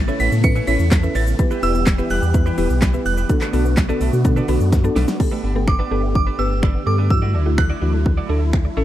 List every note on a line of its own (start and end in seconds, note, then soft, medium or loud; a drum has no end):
0.00 0.11 A1 medium
0.00 1.37 C#3 medium
0.00 1.37 A3 medium
0.00 3.26 B3 medium
0.00 1.37 E4 medium
0.00 0.21 A6 medium
0.08 0.28 C#4 medium
0.08 0.19 C#4 medium
0.08 0.28 E4 medium
0.08 0.19 E4 medium
0.08 0.28 A4 medium
0.08 0.20 B4 medium
0.08 0.28 C#5 medium
0.08 0.18 E5 medium
0.08 shaker medium
0.20 0.30 A1 loud
0.20 0.30 B3 medium
0.20 0.35 C#4 medium
0.20 0.31 E4 medium
0.20 0.31 B4 medium
0.20 0.44 B6 loud
0.20 open hi-hat medium
0.20 shaker medium
0.32 0.61 A2 medium
0.32 0.42 A4 medium
0.32 muted clean electric guitar stroke soft
0.32 shaker medium
0.43 0.54 E3 medium
0.43 0.57 C#4 medium
0.43 0.57 E4 medium
0.43 0.57 A4 medium
0.43 0.57 B4 medium
0.43 0.54 C#7 loud
0.43 muted clean electric guitar stroke soft
0.43 kick loud
0.43 closed hi-hat medium
0.43 shaker medium
0.56 0.66 E3 medium
0.56 0.66 C#4 medium
0.56 0.67 E4 medium
0.56 0.68 B4 medium
0.56 shaker soft
0.67 0.77 A1 loud
0.67 0.78 E3 medium
0.67 0.87 C#4 medium
0.67 0.83 C#4 medium
0.67 0.87 E4 medium
0.67 0.79 E4 medium
0.67 0.87 A4 medium
0.67 0.78 B4 medium
0.67 0.87 C#5 medium
0.67 1.17 B6 loud
0.67 open hi-hat medium
0.67 shaker medium
0.79 1.08 E2 loud
0.79 muted clean electric guitar stroke medium
0.79 shaker medium
0.91 1.02 A4 loud
0.91 kick loud
0.91 snare loud
0.91 clap loud
0.91 closed hi-hat medium
0.91 shaker medium
1.03 1.23 C#4 medium
1.03 1.23 E4 medium
1.03 1.23 A4 medium
1.03 1.23 B4 medium
1.03 1.14 E5 medium
1.03 muted clean electric guitar stroke soft
1.03 shaker medium
1.15 1.34 A1 loud
1.15 1.34 C#4 medium
1.15 1.27 E4 medium
1.15 1.26 B4 medium
1.15 1.38 A6 medium
1.15 open hi-hat medium
1.15 shaker medium
1.27 muted clean electric guitar stroke soft
1.27 shaker medium
1.39 1.49 E3 loud
1.39 3.28 E3 medium
1.39 3.28 G3 medium
1.39 1.52 B3 medium
1.39 1.52 E4 medium
1.39 1.52 G4 medium
1.39 3.28 G4 medium
1.39 1.52 B4 medium
1.39 muted clean electric guitar stroke soft
1.39 kick loud
1.39 closed hi-hat medium
1.39 shaker medium
1.51 1.62 E4 medium
1.51 1.62 G4 medium
1.51 1.63 B4 medium
1.51 shaker medium
1.63 2.01 E1 loud
1.63 1.73 E3 medium
1.63 1.82 B3 medium
1.63 1.78 E4 medium
1.63 1.82 E4 medium
1.63 1.82 G4 medium
1.63 1.74 G4 medium
1.63 1.83 B4 medium
1.63 1.73 B4 medium
1.63 2.07 E6 loud
1.63 open hi-hat medium
1.63 shaker medium
1.75 1.85 B3 medium
1.75 muted clean electric guitar stroke soft
1.75 shaker medium
1.87 kick loud
1.87 snare loud
1.87 clap loud
1.87 closed hi-hat medium
1.87 shaker medium
1.98 2.18 B3 medium
1.98 2.18 E4 medium
1.98 2.09 E4 medium
1.98 2.18 G4 medium
1.98 2.10 G4 medium
1.98 2.10 B4 medium
1.98 2.18 B4 medium
1.98 2.09 E5 medium
1.98 shaker medium
2.10 2.20 E1 medium
2.10 2.21 G3 medium
2.10 2.25 E4 medium
2.10 2.22 G4 medium
2.10 2.21 B4 medium
2.10 3.05 F#6 loud
2.10 open hi-hat medium
2.10 shaker medium
2.22 2.51 E2 medium
2.22 2.33 G4 medium
2.22 muted clean electric guitar stroke medium
2.22 shaker medium
2.34 2.45 E3 medium
2.34 2.47 B3 medium
2.34 2.47 E4 medium
2.34 2.47 G4 medium
2.34 2.47 B4 medium
2.34 muted clean electric guitar stroke soft
2.34 kick loud
2.34 closed hi-hat medium
2.34 shaker medium
2.46 2.57 E3 medium
2.46 2.57 E4 medium
2.46 2.57 G4 medium
2.46 2.58 B4 loud
2.46 shaker soft
2.58 2.68 E1 medium
2.58 2.68 E3 medium
2.58 2.77 B3 medium
2.58 2.77 E4 medium
2.58 2.73 E4 medium
2.58 2.78 G4 medium
2.58 2.70 G4 medium
2.58 2.78 B4 medium
2.58 2.69 B4 medium
2.58 open hi-hat medium
2.58 shaker medium
2.70 2.99 B1 loud
2.70 muted clean electric guitar stroke soft
2.70 shaker medium
2.82 3.01 E4 medium
2.82 2.92 G4 medium
2.82 2.93 G4 medium
2.82 2.93 B4 loud
2.82 kick loud
2.82 snare loud
2.82 clap loud
2.82 closed hi-hat medium
2.82 shaker medium
2.94 3.13 B3 medium
2.94 3.13 E4 medium
2.94 3.13 G4 medium
2.94 3.13 B4 medium
2.94 3.04 E5 medium
2.94 muted clean electric guitar stroke soft
2.94 shaker medium
3.06 3.25 E1 loud
3.06 4.92 F#6 loud
3.06 muted clean electric guitar stroke soft
3.06 open hi-hat medium
3.06 shaker medium
3.17 3.29 E4 medium
3.17 3.29 G4 medium
3.17 3.29 B4 medium
3.17 shaker medium
3.29 5.18 D3 medium
3.29 3.40 D3 loud
3.29 5.18 A3 medium
3.29 3.42 B3 medium
3.29 5.18 B3 medium
3.29 3.42 D4 medium
3.29 5.18 F#4 medium
3.29 3.43 F#4 medium
3.29 3.43 A4 medium
3.29 muted clean electric guitar stroke soft
3.29 kick loud
3.29 closed hi-hat medium
3.29 shaker medium
3.41 3.52 D4 medium
3.41 3.52 A4 medium
3.41 3.53 B4 medium
3.41 clap medium
3.41 shaker medium
3.53 3.92 B1 medium
3.53 3.64 D3 medium
3.53 3.73 B3 medium
3.53 3.68 D4 medium
3.53 3.73 D4 medium
3.53 3.73 F#4 medium
3.53 3.73 A4 medium
3.53 3.65 A4 medium
3.53 3.64 B4 medium
3.53 open hi-hat medium
3.53 shaker medium
3.65 3.76 B3 medium
3.65 muted clean electric guitar stroke medium
3.65 shaker medium
3.77 muted clean electric guitar stroke medium
3.77 kick loud
3.77 snare loud
3.77 clap loud
3.77 closed hi-hat medium
3.77 shaker medium
3.89 4.08 B3 medium
3.89 4.09 D4 medium
3.89 3.99 D4 medium
3.89 4.09 F#4 medium
3.89 4.00 A4 medium
3.89 4.09 A4 loud
3.89 4.00 B4 medium
3.89 3.99 D5 medium
3.89 shaker medium
4.00 4.11 B1 medium
4.00 4.11 A3 medium
4.00 4.16 D4 medium
4.00 4.12 A4 medium
4.00 4.11 B4 medium
4.00 open hi-hat medium
4.00 shaker medium
4.13 4.42 B2 medium
4.13 4.23 F#4 medium
4.13 muted clean electric guitar stroke soft
4.13 shaker medium
4.25 4.35 D3 medium
4.25 4.38 B3 loud
4.25 4.38 D4 medium
4.25 4.38 F#4 medium
4.25 4.38 A4 loud
4.25 muted clean electric guitar stroke soft
4.25 kick loud
4.25 closed hi-hat medium
4.25 shaker medium
4.36 4.47 D3 medium
4.36 4.47 D4 medium
4.36 4.48 A4 medium
4.36 4.48 B4 medium
4.36 shaker soft
4.48 4.58 B1 medium
4.48 4.59 D3 medium
4.48 4.68 B3 medium
4.48 4.63 D4 medium
4.48 4.68 D4 medium
4.48 4.68 F#4 medium
4.48 4.60 A4 medium
4.48 4.68 A4 loud
4.48 4.59 B4 medium
4.48 open hi-hat medium
4.48 shaker medium
4.60 4.89 F#2 loud
4.60 muted clean electric guitar stroke medium
4.60 shaker medium
4.72 4.83 F#4 loud
4.72 kick loud
4.72 snare medium
4.72 closed hi-hat medium
4.72 shaker medium
4.84 5.04 B3 medium
4.84 5.04 D4 medium
4.84 5.04 F#4 medium
4.84 5.04 A4 loud
4.84 4.95 D5 medium
4.84 muted clean electric guitar stroke soft
4.84 shaker medium
4.96 5.06 B1 loud
4.96 5.15 D4 medium
4.96 5.07 A4 medium
4.96 5.07 B4 loud
4.96 snare loud
4.96 open hi-hat medium
4.96 shaker medium
5.08 muted clean electric guitar stroke soft
5.08 snare loud
5.08 shaker medium
5.20 8.74 D3 medium
5.20 5.30 D3 loud
5.20 8.84 A3 medium
5.20 5.39 B3 medium
5.20 7.09 B3 medium
5.20 5.39 G4 medium
5.20 7.09 G4 medium
5.20 5.40 A4 loud
5.20 muted clean electric guitar stroke soft
5.20 kick loud
5.20 crash medium
5.32 5.42 A3 medium
5.32 5.42 D4 medium
5.32 5.43 A4 medium
5.32 5.43 B4 medium
5.43 5.82 G1 medium
5.43 5.54 B3 medium
5.43 5.59 D4 medium
5.43 5.55 A4 medium
5.43 5.54 B4 medium
5.55 5.66 A3 medium
5.55 5.75 B3 medium
5.55 5.75 G4 medium
5.55 5.75 A4 medium
5.55 muted clean electric guitar stroke soft
5.68 5.78 D3 medium
5.68 6.14 D6 medium
5.68 finger snap loud
5.68 kick loud
5.79 5.90 B3 medium
5.79 5.90 D4 medium
5.79 5.90 A4 medium
5.79 5.91 B4 medium
5.91 6.30 G1 medium
5.91 6.02 D3 medium
5.91 6.17 B3 medium
5.91 6.06 D4 medium
5.91 6.17 G4 medium
5.91 6.18 A4 medium
5.91 6.03 A4 medium
5.91 6.02 B4 medium
6.03 6.14 A3 medium
6.03 muted clean electric guitar stroke soft
6.15 6.25 D3 medium
6.15 6.26 D6 medium
6.15 muted clean electric guitar stroke soft
6.15 kick loud
6.27 6.37 D4 medium
6.27 6.38 A4 medium
6.27 6.38 B4 medium
6.38 6.77 G1 medium
6.38 6.65 B3 medium
6.38 6.54 D4 medium
6.38 6.65 G4 medium
6.38 6.50 A4 medium
6.38 6.65 B4 medium
6.38 6.49 B4 medium
6.38 6.88 E6 medium
6.50 muted clean electric guitar stroke medium
6.62 6.82 D4 medium
6.62 6.74 A4 medium
6.62 6.73 B4 medium
6.62 finger snap loud
6.62 kick loud
6.75 6.85 B3 medium
6.75 muted clean electric guitar stroke medium
6.86 7.36 G2 loud
6.86 6.99 B3 medium
6.86 7.00 G4 medium
6.86 7.00 A4 medium
6.86 6.97 D6 medium
6.86 muted clean electric guitar stroke soft
6.98 7.09 D3 medium
6.98 7.14 D4 soft
6.98 7.10 A4 medium
6.98 7.10 B4 medium
7.10 7.21 E3 medium
7.10 7.30 D4 medium
7.10 8.84 E4 medium
7.10 7.30 E4 medium
7.10 7.30 F#4 medium
7.10 7.55 E6 medium
7.10 muted clean electric guitar stroke soft
7.10 kick loud
7.22 7.33 A3 medium
7.22 7.33 E4 medium
7.22 7.33 F#4 medium
7.22 7.34 D5 medium
7.34 7.73 D2 medium
7.34 7.45 D4 medium
7.34 7.49 E4 medium
7.34 7.46 F#4 medium
7.34 7.45 D5 medium
7.46 7.56 A3 medium
7.46 7.65 D4 medium
7.46 7.66 E4 medium
7.46 7.66 F#4 medium
7.58 7.68 E3 medium
7.58 8.02 F#6 medium
7.58 finger snap loud
7.58 muted clean electric guitar stroke soft
7.58 kick loud
7.70 7.80 D4 medium
7.70 7.80 E4 medium
7.70 7.81 F#4 medium
7.70 7.82 D5 medium
7.81 8.20 D2 medium
7.81 7.92 E3 medium
7.81 8.08 D4 medium
7.81 8.08 E4 medium
7.81 7.97 E4 medium
7.81 8.08 F#4 medium
7.81 7.93 F#4 medium
7.81 7.92 D5 medium
7.94 8.04 A3 medium
7.94 muted clean electric guitar stroke soft
8.06 8.16 E3 medium
8.06 muted clean electric guitar stroke soft
8.06 kick loud
8.17 8.28 E4 medium
8.17 8.29 F#4 medium
8.17 8.29 D5 medium
8.29 8.68 D2 medium
8.29 8.55 D4 medium
8.29 8.44 E4 medium
8.29 8.55 E4 medium
8.29 8.41 F#4 medium
8.29 8.56 A4 loud
8.29 8.40 D5 medium
8.41 muted clean electric guitar stroke medium
8.53 finger snap loud
8.53 kick loud
8.65 8.75 D4 medium
8.65 muted clean electric guitar stroke soft
8.77 8.84 A1 loud
8.77 8.84 C#3 medium
8.77 8.84 E3 medium
8.77 8.84 C#4 medium
8.77 8.84 E4 medium
8.77 8.84 A4 loud
8.77 8.84 A4 medium
8.77 8.84 C#5 medium